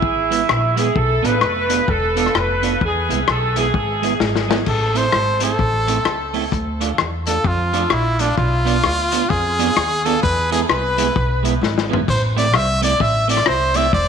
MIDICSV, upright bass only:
0, 0, Header, 1, 2, 480
1, 0, Start_track
1, 0, Key_signature, 0, "minor"
1, 0, Tempo, 463679
1, 989, Time_signature, 4, 2, 24, 8
1, 14578, End_track
2, 0, Start_track
2, 0, Title_t, "Upright bass"
2, 0, Program_c, 0, 32
2, 24, Note_on_c, 0, 32, 89
2, 434, Note_off_c, 0, 32, 0
2, 506, Note_on_c, 0, 34, 89
2, 915, Note_off_c, 0, 34, 0
2, 991, Note_on_c, 0, 35, 99
2, 1239, Note_off_c, 0, 35, 0
2, 1285, Note_on_c, 0, 33, 93
2, 1443, Note_off_c, 0, 33, 0
2, 1471, Note_on_c, 0, 29, 90
2, 1878, Note_off_c, 0, 29, 0
2, 1948, Note_on_c, 0, 28, 94
2, 2357, Note_off_c, 0, 28, 0
2, 2429, Note_on_c, 0, 29, 100
2, 2838, Note_off_c, 0, 29, 0
2, 2910, Note_on_c, 0, 40, 101
2, 3160, Note_off_c, 0, 40, 0
2, 3207, Note_on_c, 0, 36, 87
2, 3365, Note_off_c, 0, 36, 0
2, 3398, Note_on_c, 0, 35, 90
2, 3804, Note_off_c, 0, 35, 0
2, 3871, Note_on_c, 0, 32, 89
2, 4280, Note_off_c, 0, 32, 0
2, 4348, Note_on_c, 0, 32, 89
2, 4758, Note_off_c, 0, 32, 0
2, 4833, Note_on_c, 0, 33, 99
2, 5241, Note_off_c, 0, 33, 0
2, 5311, Note_on_c, 0, 32, 88
2, 5719, Note_off_c, 0, 32, 0
2, 5790, Note_on_c, 0, 33, 92
2, 6199, Note_off_c, 0, 33, 0
2, 6272, Note_on_c, 0, 37, 81
2, 6680, Note_off_c, 0, 37, 0
2, 6753, Note_on_c, 0, 38, 100
2, 7161, Note_off_c, 0, 38, 0
2, 7236, Note_on_c, 0, 40, 89
2, 7642, Note_off_c, 0, 40, 0
2, 7709, Note_on_c, 0, 41, 102
2, 8118, Note_off_c, 0, 41, 0
2, 8187, Note_on_c, 0, 34, 91
2, 8597, Note_off_c, 0, 34, 0
2, 8672, Note_on_c, 0, 35, 107
2, 9080, Note_off_c, 0, 35, 0
2, 9154, Note_on_c, 0, 38, 93
2, 9561, Note_off_c, 0, 38, 0
2, 9630, Note_on_c, 0, 41, 100
2, 10038, Note_off_c, 0, 41, 0
2, 10109, Note_on_c, 0, 39, 91
2, 10517, Note_off_c, 0, 39, 0
2, 10593, Note_on_c, 0, 40, 105
2, 11000, Note_off_c, 0, 40, 0
2, 11068, Note_on_c, 0, 36, 90
2, 11476, Note_off_c, 0, 36, 0
2, 11553, Note_on_c, 0, 35, 93
2, 11959, Note_off_c, 0, 35, 0
2, 12023, Note_on_c, 0, 32, 93
2, 12433, Note_off_c, 0, 32, 0
2, 12509, Note_on_c, 0, 33, 103
2, 12985, Note_off_c, 0, 33, 0
2, 12985, Note_on_c, 0, 36, 90
2, 13394, Note_off_c, 0, 36, 0
2, 13462, Note_on_c, 0, 33, 91
2, 13872, Note_off_c, 0, 33, 0
2, 13945, Note_on_c, 0, 36, 90
2, 14353, Note_off_c, 0, 36, 0
2, 14419, Note_on_c, 0, 28, 105
2, 14578, Note_off_c, 0, 28, 0
2, 14578, End_track
0, 0, End_of_file